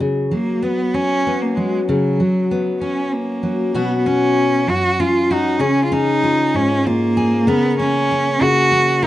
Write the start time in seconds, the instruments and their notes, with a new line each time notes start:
Already playing: steel-string acoustic guitar F#3
0.00 steel-string acoustic guitar C#3
0.31 steel-string acoustic guitar F#3, cello A#3
0.63 steel-string acoustic guitar B3, cello B3
0.94 cello C#4, steel-string acoustic guitar C#4
1.27 steel-string acoustic guitar B3
1.41 cello A#3
1.56 steel-string acoustic guitar F#3, cello G#3
1.87 steel-string acoustic guitar C#3, cello F#3
2.20 steel-string acoustic guitar F#3
2.51 steel-string acoustic guitar B3
2.81 steel-string acoustic guitar C#4, cello C#4
3.12 cello A#3
3.43 steel-string acoustic guitar F#3
3.75 steel-string acoustic guitar B2 F#4, cello B3
3.98 cello B3
4.06 steel-string acoustic guitar C#4, cello C#4
4.67 steel-string acoustic guitar F#2, cello F#4
5.00 steel-string acoustic guitar C#4, cello F4
5.31 cello D#4, steel-string acoustic guitar F#4
5.59 steel-string acoustic guitar C#3 G#4, cello C#4
5.84 cello F4
5.92 steel-string acoustic guitar C#4, cello D#4
6.23 steel-string acoustic guitar F4
6.54 steel-string acoustic guitar G#2, cello C#4
6.86 cello A#3, steel-string acoustic guitar F4
7.17 steel-string acoustic guitar G#4
7.47 steel-string acoustic guitar C#3 A#4, cello B3
7.79 steel-string acoustic guitar A#3, cello C#4
8.11 steel-string acoustic guitar C#4
8.41 steel-string acoustic guitar C#3, cello F#4
8.72 steel-string acoustic guitar C#4
9.03 cello D#4, steel-string acoustic guitar A#4